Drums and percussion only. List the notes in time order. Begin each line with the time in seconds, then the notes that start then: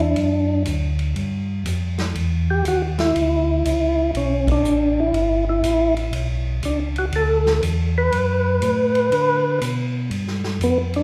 0.16 ride
0.65 hi-hat pedal, ride
0.99 ride
1.16 ride
1.66 hi-hat pedal, ride
1.98 snare, ride
2.15 ride
2.65 hi-hat pedal, ride
2.98 snare, ride
3.16 ride
3.65 hi-hat pedal, ride
4.15 ride
4.47 kick, ride
4.65 hi-hat pedal
5.14 ride
5.64 hi-hat pedal, ride
5.97 ride
6.13 ride
6.63 hi-hat pedal, ride
6.96 ride
7.12 ride
7.46 snare
7.63 hi-hat pedal, ride
8.12 ride
8.62 hi-hat pedal, ride
8.95 ride
9.12 ride
9.61 hi-hat pedal, ride
10.11 ride
10.28 snare
10.44 snare
10.61 hi-hat pedal, ride
10.94 ride